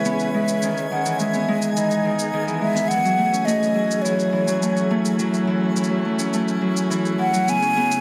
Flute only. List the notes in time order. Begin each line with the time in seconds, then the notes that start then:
Already playing: E5
0.34 E5
0.91 F#5
1.19 E5
1.75 D#5
2.61 E5
2.88 F#5
3.45 D#5
4.02 C#5
7.20 F#5
7.49 G#5